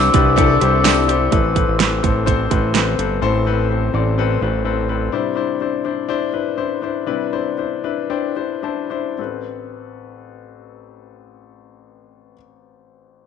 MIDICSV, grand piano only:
0, 0, Header, 1, 2, 480
1, 0, Start_track
1, 0, Tempo, 475813
1, 1336, Time_signature, 4, 2, 24, 8
1, 5659, Tempo, 493827
1, 7579, Tempo, 535236
1, 9019, Tempo, 561798
1, 12503, End_track
2, 0, Start_track
2, 0, Title_t, "Grand piano"
2, 0, Program_c, 0, 0
2, 0, Control_c, 0, 64, 127
2, 0, Note_on_c, 0, 48, 67
2, 0, Note_on_c, 0, 55, 63
2, 0, Note_on_c, 0, 62, 91
2, 0, Note_on_c, 0, 64, 81
2, 0, Note_on_c, 0, 67, 82
2, 0, Note_on_c, 0, 69, 108
2, 0, Note_on_c, 0, 72, 84
2, 0, Note_on_c, 0, 74, 82
2, 132, Note_off_c, 0, 62, 0
2, 132, Note_on_c, 0, 62, 95
2, 138, Note_off_c, 0, 64, 0
2, 138, Note_off_c, 0, 67, 0
2, 138, Note_on_c, 0, 64, 78
2, 138, Note_on_c, 0, 67, 86
2, 139, Note_on_c, 0, 71, 100
2, 334, Note_off_c, 0, 62, 0
2, 337, Note_off_c, 0, 64, 0
2, 337, Note_off_c, 0, 67, 0
2, 338, Note_off_c, 0, 71, 0
2, 364, Note_on_c, 0, 62, 117
2, 370, Note_on_c, 0, 67, 95
2, 371, Note_off_c, 0, 69, 0
2, 371, Note_on_c, 0, 69, 116
2, 372, Note_on_c, 0, 64, 98
2, 570, Note_off_c, 0, 62, 0
2, 573, Note_off_c, 0, 67, 0
2, 573, Note_off_c, 0, 69, 0
2, 574, Note_off_c, 0, 64, 0
2, 606, Note_on_c, 0, 62, 91
2, 609, Note_on_c, 0, 64, 85
2, 610, Note_on_c, 0, 67, 82
2, 612, Note_off_c, 0, 72, 0
2, 612, Note_on_c, 0, 72, 100
2, 811, Note_off_c, 0, 62, 0
2, 812, Note_off_c, 0, 64, 0
2, 812, Note_off_c, 0, 67, 0
2, 813, Note_off_c, 0, 72, 0
2, 844, Note_on_c, 0, 62, 104
2, 848, Note_on_c, 0, 64, 87
2, 853, Note_on_c, 0, 67, 94
2, 856, Note_on_c, 0, 69, 97
2, 1049, Note_off_c, 0, 62, 0
2, 1051, Note_off_c, 0, 64, 0
2, 1054, Note_off_c, 0, 67, 0
2, 1056, Note_off_c, 0, 69, 0
2, 1084, Note_on_c, 0, 62, 90
2, 1087, Note_on_c, 0, 64, 84
2, 1090, Note_on_c, 0, 67, 82
2, 1094, Note_on_c, 0, 72, 97
2, 1289, Note_off_c, 0, 62, 0
2, 1291, Note_off_c, 0, 64, 0
2, 1292, Note_off_c, 0, 67, 0
2, 1294, Note_off_c, 0, 72, 0
2, 1320, Note_on_c, 0, 60, 79
2, 1324, Note_on_c, 0, 69, 79
2, 1326, Note_on_c, 0, 45, 59
2, 1327, Note_on_c, 0, 52, 60
2, 1333, Note_on_c, 0, 71, 101
2, 1349, Note_off_c, 0, 55, 0
2, 1349, Control_c, 0, 64, 0
2, 1350, Note_off_c, 0, 48, 0
2, 1356, Note_off_c, 0, 74, 0
2, 1505, Control_c, 0, 64, 127
2, 1527, Note_off_c, 0, 60, 0
2, 1529, Note_off_c, 0, 69, 0
2, 1534, Note_off_c, 0, 71, 0
2, 1562, Note_on_c, 0, 60, 77
2, 1563, Note_on_c, 0, 69, 71
2, 1567, Note_on_c, 0, 71, 92
2, 1768, Note_off_c, 0, 60, 0
2, 1768, Note_off_c, 0, 69, 0
2, 1770, Note_off_c, 0, 71, 0
2, 1801, Note_on_c, 0, 60, 72
2, 1806, Note_on_c, 0, 69, 62
2, 1808, Note_on_c, 0, 71, 82
2, 2007, Note_off_c, 0, 60, 0
2, 2010, Note_off_c, 0, 45, 0
2, 2010, Note_off_c, 0, 52, 0
2, 2010, Note_off_c, 0, 69, 0
2, 2011, Note_off_c, 0, 71, 0
2, 2043, Note_on_c, 0, 69, 67
2, 2045, Note_on_c, 0, 60, 81
2, 2046, Note_on_c, 0, 72, 80
2, 2248, Note_off_c, 0, 69, 0
2, 2249, Note_off_c, 0, 60, 0
2, 2250, Note_off_c, 0, 72, 0
2, 2277, Note_on_c, 0, 60, 88
2, 2278, Note_on_c, 0, 69, 75
2, 2282, Note_on_c, 0, 72, 106
2, 2485, Note_off_c, 0, 60, 0
2, 2486, Note_off_c, 0, 69, 0
2, 2488, Note_off_c, 0, 72, 0
2, 2519, Note_on_c, 0, 60, 78
2, 2524, Note_on_c, 0, 69, 68
2, 2530, Note_on_c, 0, 71, 85
2, 2726, Note_off_c, 0, 60, 0
2, 2729, Note_off_c, 0, 69, 0
2, 2732, Note_off_c, 0, 71, 0
2, 2764, Note_on_c, 0, 60, 82
2, 2766, Note_on_c, 0, 69, 71
2, 2769, Note_on_c, 0, 71, 91
2, 2968, Note_off_c, 0, 60, 0
2, 2970, Note_off_c, 0, 69, 0
2, 2971, Note_off_c, 0, 71, 0
2, 3013, Note_on_c, 0, 60, 78
2, 3016, Note_on_c, 0, 69, 66
2, 3018, Note_on_c, 0, 71, 78
2, 3213, Note_off_c, 0, 60, 0
2, 3215, Note_off_c, 0, 69, 0
2, 3216, Note_off_c, 0, 71, 0
2, 3245, Note_on_c, 0, 60, 85
2, 3247, Note_on_c, 0, 45, 69
2, 3249, Note_on_c, 0, 52, 58
2, 3250, Note_on_c, 0, 69, 89
2, 3251, Note_on_c, 0, 72, 110
2, 3449, Note_off_c, 0, 60, 0
2, 3452, Note_off_c, 0, 69, 0
2, 3453, Note_off_c, 0, 72, 0
2, 3487, Note_on_c, 0, 60, 78
2, 3494, Note_on_c, 0, 69, 73
2, 3500, Note_on_c, 0, 71, 90
2, 3691, Note_off_c, 0, 60, 0
2, 3694, Note_off_c, 0, 69, 0
2, 3697, Note_off_c, 0, 71, 0
2, 3728, Note_on_c, 0, 60, 69
2, 3732, Note_on_c, 0, 69, 63
2, 3735, Note_on_c, 0, 71, 68
2, 3931, Note_off_c, 0, 45, 0
2, 3931, Note_off_c, 0, 60, 0
2, 3932, Note_off_c, 0, 52, 0
2, 3933, Note_off_c, 0, 69, 0
2, 3935, Note_off_c, 0, 71, 0
2, 3972, Note_on_c, 0, 60, 72
2, 3976, Note_on_c, 0, 69, 66
2, 3981, Note_on_c, 0, 74, 82
2, 4173, Note_off_c, 0, 60, 0
2, 4175, Note_off_c, 0, 69, 0
2, 4177, Note_off_c, 0, 74, 0
2, 4216, Note_on_c, 0, 60, 90
2, 4222, Note_on_c, 0, 69, 87
2, 4225, Note_on_c, 0, 71, 98
2, 4415, Note_off_c, 0, 60, 0
2, 4418, Note_off_c, 0, 69, 0
2, 4420, Note_off_c, 0, 71, 0
2, 4458, Note_on_c, 0, 60, 75
2, 4463, Note_on_c, 0, 69, 68
2, 4466, Note_on_c, 0, 71, 79
2, 4657, Note_off_c, 0, 60, 0
2, 4659, Note_off_c, 0, 69, 0
2, 4660, Note_off_c, 0, 71, 0
2, 4689, Note_on_c, 0, 60, 84
2, 4695, Note_on_c, 0, 69, 73
2, 4695, Note_on_c, 0, 71, 82
2, 4892, Note_off_c, 0, 60, 0
2, 4895, Note_off_c, 0, 69, 0
2, 4895, Note_off_c, 0, 71, 0
2, 4930, Note_on_c, 0, 60, 74
2, 4933, Note_on_c, 0, 69, 62
2, 4936, Note_on_c, 0, 71, 83
2, 5133, Note_off_c, 0, 60, 0
2, 5134, Note_off_c, 0, 69, 0
2, 5136, Note_off_c, 0, 71, 0
2, 5168, Note_on_c, 0, 62, 85
2, 5173, Note_on_c, 0, 64, 78
2, 5174, Note_on_c, 0, 48, 58
2, 5176, Note_on_c, 0, 55, 61
2, 5179, Note_on_c, 0, 72, 88
2, 5187, Control_c, 0, 64, 0
2, 5362, Control_c, 0, 64, 127
2, 5372, Note_off_c, 0, 62, 0
2, 5375, Note_off_c, 0, 64, 0
2, 5378, Note_off_c, 0, 72, 0
2, 5403, Note_on_c, 0, 62, 79
2, 5407, Note_on_c, 0, 64, 69
2, 5415, Note_on_c, 0, 72, 86
2, 5611, Note_off_c, 0, 62, 0
2, 5612, Note_off_c, 0, 64, 0
2, 5616, Note_off_c, 0, 72, 0
2, 5659, Note_on_c, 0, 62, 69
2, 5663, Note_on_c, 0, 64, 64
2, 5666, Note_on_c, 0, 72, 73
2, 5852, Note_off_c, 0, 48, 0
2, 5852, Note_off_c, 0, 62, 0
2, 5853, Note_off_c, 0, 55, 0
2, 5854, Note_off_c, 0, 64, 0
2, 5856, Note_off_c, 0, 72, 0
2, 5890, Note_on_c, 0, 62, 75
2, 5893, Note_on_c, 0, 64, 65
2, 5899, Note_on_c, 0, 72, 73
2, 6086, Note_off_c, 0, 62, 0
2, 6087, Note_off_c, 0, 64, 0
2, 6090, Note_off_c, 0, 72, 0
2, 6122, Note_on_c, 0, 62, 94
2, 6129, Note_on_c, 0, 64, 76
2, 6132, Note_on_c, 0, 72, 96
2, 6321, Note_off_c, 0, 62, 0
2, 6324, Note_off_c, 0, 64, 0
2, 6326, Note_off_c, 0, 72, 0
2, 6363, Note_on_c, 0, 62, 68
2, 6366, Note_on_c, 0, 64, 60
2, 6366, Note_on_c, 0, 71, 76
2, 6561, Note_off_c, 0, 62, 0
2, 6563, Note_off_c, 0, 64, 0
2, 6563, Note_off_c, 0, 71, 0
2, 6595, Note_on_c, 0, 62, 68
2, 6599, Note_on_c, 0, 64, 73
2, 6599, Note_on_c, 0, 72, 92
2, 6798, Note_off_c, 0, 62, 0
2, 6800, Note_off_c, 0, 64, 0
2, 6800, Note_off_c, 0, 72, 0
2, 6836, Note_on_c, 0, 62, 74
2, 6845, Note_on_c, 0, 64, 66
2, 6848, Note_on_c, 0, 72, 80
2, 7040, Note_off_c, 0, 62, 0
2, 7045, Note_off_c, 0, 64, 0
2, 7046, Note_off_c, 0, 72, 0
2, 7074, Note_on_c, 0, 62, 82
2, 7079, Note_on_c, 0, 55, 54
2, 7079, Note_on_c, 0, 64, 75
2, 7080, Note_on_c, 0, 71, 85
2, 7084, Note_on_c, 0, 48, 52
2, 7283, Note_off_c, 0, 62, 0
2, 7285, Note_off_c, 0, 64, 0
2, 7286, Note_off_c, 0, 71, 0
2, 7326, Note_on_c, 0, 62, 70
2, 7328, Note_on_c, 0, 64, 63
2, 7330, Note_on_c, 0, 72, 85
2, 7534, Note_off_c, 0, 62, 0
2, 7535, Note_off_c, 0, 64, 0
2, 7536, Note_off_c, 0, 72, 0
2, 7574, Note_on_c, 0, 62, 61
2, 7577, Note_on_c, 0, 64, 57
2, 7581, Note_on_c, 0, 72, 72
2, 7768, Note_off_c, 0, 62, 0
2, 7770, Note_off_c, 0, 64, 0
2, 7771, Note_off_c, 0, 55, 0
2, 7772, Note_off_c, 0, 72, 0
2, 7773, Note_off_c, 0, 48, 0
2, 7806, Note_on_c, 0, 62, 70
2, 7807, Note_on_c, 0, 64, 56
2, 7808, Note_on_c, 0, 76, 50
2, 7811, Note_on_c, 0, 71, 78
2, 8003, Note_off_c, 0, 62, 0
2, 8003, Note_off_c, 0, 64, 0
2, 8005, Note_off_c, 0, 71, 0
2, 8027, Note_off_c, 0, 76, 0
2, 8039, Note_on_c, 0, 62, 90
2, 8039, Note_on_c, 0, 79, 53
2, 8041, Note_on_c, 0, 64, 76
2, 8043, Note_on_c, 0, 72, 80
2, 8239, Note_off_c, 0, 62, 0
2, 8240, Note_off_c, 0, 64, 0
2, 8241, Note_off_c, 0, 72, 0
2, 8271, Note_on_c, 0, 62, 65
2, 8274, Note_on_c, 0, 64, 61
2, 8278, Note_on_c, 0, 72, 78
2, 8477, Note_off_c, 0, 62, 0
2, 8478, Note_off_c, 0, 64, 0
2, 8480, Note_off_c, 0, 72, 0
2, 8488, Note_off_c, 0, 79, 0
2, 8514, Note_on_c, 0, 62, 75
2, 8518, Note_on_c, 0, 64, 64
2, 8523, Note_on_c, 0, 81, 61
2, 8524, Note_on_c, 0, 72, 74
2, 8723, Note_off_c, 0, 62, 0
2, 8725, Note_off_c, 0, 64, 0
2, 8728, Note_off_c, 0, 72, 0
2, 8758, Note_on_c, 0, 62, 69
2, 8760, Note_on_c, 0, 64, 68
2, 8765, Note_on_c, 0, 72, 75
2, 8970, Note_off_c, 0, 62, 0
2, 8972, Note_off_c, 0, 64, 0
2, 8974, Note_off_c, 0, 72, 0
2, 8984, Note_off_c, 0, 81, 0
2, 9001, Note_on_c, 0, 60, 55
2, 9016, Note_on_c, 0, 33, 51
2, 9017, Note_on_c, 0, 69, 53
2, 9029, Control_c, 0, 64, 0
2, 9036, Note_on_c, 0, 71, 62
2, 9188, Control_c, 0, 64, 127
2, 11684, Note_off_c, 0, 60, 0
2, 11698, Note_off_c, 0, 33, 0
2, 11699, Note_off_c, 0, 69, 0
2, 11719, Note_off_c, 0, 71, 0
2, 12503, End_track
0, 0, End_of_file